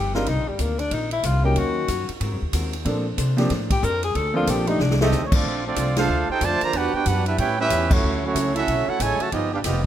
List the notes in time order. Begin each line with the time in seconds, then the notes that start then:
Already playing: G1 G2 F3 B3 D#4 G4
0.14 G3 C4 D4 D#4 F4 A#4, snare
0.26 C2 C3 D#3 A#3 D4 D#4, kick, ride
0.38 A#1
0.48 G1 G3
0.58 D2 C3 D#3 A#3 D4, kick, hi-hat pedal, ride
0.79 D4, ride
0.91 A#1 C3 D#3 A#3 D4 D#4, kick, ride
1.11 E4, ride
1.23 C2 C3 D#3 A#3 D4 F4, kick, hi-hat pedal, ride
1.43 F#3 A#3 C#4 D#4 G4 A#4
1.55 D#2 D#3 A#3 C#4 F#4, kick, ride
1.88 F#2 D#3 A#3 C#4 F#4, kick, hi-hat pedal, ride
2.09 muted upright bass stroke, ride
2.20 G#2 G#3 C4 F#4 A#4, kick, ride
2.32 F#2
2.42 D#2
2.52 D#2 G#3 C4 F#4 A#4, kick, hi-hat pedal, ride
2.73 ride
2.85 A#2 F3 A#3 C4 D4 A4 C5, kick, ride
3.17 C3 A#3 D4 A4 C5, kick, hi-hat pedal, ride
3.37 F3 A#3 C4 D4 G4, snare, ride
3.50 A2 A#3 D4 A4 C5, kick, snare, ride
3.70 G4, kick, ride
3.82 F2 A#3 D4 A4 A#4 C5, kick, hi-hat pedal
4.03 G#4, ride
4.14 D2 A#3 D4 A4 C5, kick, ride
4.34 F3 A#3 C4 D4 F4 A4
4.46 A#1 A#3 D4 G4 A4 C5, kick, hi-hat pedal, ride
4.67 F3 A3 D4 D#4 G4, ride
4.78 C2 F2 D#3 A3 D4, snare
4.91 snare
5.01 A3 C4 D#4 G4 A4 D#5, snare
5.11 D2 F2 D#3 A3 D4, snare, hi-hat pedal
5.25 C#5
5.32 F3 A3 C4 D4 F4 A4 D5, kick, crash
5.44 A#1 A#3 D4 A4 C5, kick
5.64 F3 A3 C4 D4 F4 A4 D5
5.75 C2 A#3 D4 A4 C5, kick, hi-hat pedal, ride
5.96 A3 D4 F4 A4 C5 F5, snare, ride
6.08 D2 A#3 D4 A4 C5
6.29 D#4 G4 A4 C5 G5, muted upright bass stroke
6.41 F2 D3 F3 A3 A#3 D4 F4 A4 C5 D5 A5, kick, hi-hat pedal, ride
6.61 D3 F3 A#3 F4 C5 D5 A#5, muted upright bass stroke, ride
6.73 E2 E3 G3 B3 D4 F#4 G4 B4 F#5, kick, ride
6.93 B3 D4 F#4 G4 B4 G5, muted upright bass stroke
7.05 F#2 E3 G3 B3 D4 F#4 G4 B4 F#5, kick, hi-hat pedal, ride
7.26 G3 B3 D4 E4 G4 B4 E5, ride
7.37 A2 G3 B3 C#4 E4 G4 B4 C#5 G5, kick, ride
7.59 G3 C#4 E4 G4 B4 E5
7.69 E2 A2 G3 B3 C#4, kick, hi-hat pedal, ride
7.90 F#3 A3 C#4 E4 F#4 C#5, kick, crash
8.02 D2 D3 F#3 C#4 E4
8.23 F#3 A3 C#4 E4 F#4 C#5
8.34 C#2 D3 F#3 C#4 E4, kick, hi-hat pedal, ride
8.55 A3 C#4 E4 F#4 A4 E5, ride
8.66 B1 D3 F#3 C#4 E4, kick, ride
8.87 A3 C#4 E4 F#4 A4 C#5 F#5, muted upright bass stroke
8.99 A1 D3 F#3 G#3 C#4 E4 A4 C#5 G#5, kick, hi-hat pedal, ride
9.19 C#3 F#3 A3 F#4 C#5 E5 A5, muted upright bass stroke, ride
9.31 G1 G2 F3 B3 D#4 F4 G4 D#5, kick, ride
9.53 B3 D4 F4 G4 B4 F5
9.64 F1 G2 F3 B3 D#4 F4 G4 D#5, kick, snare, hi-hat pedal, ride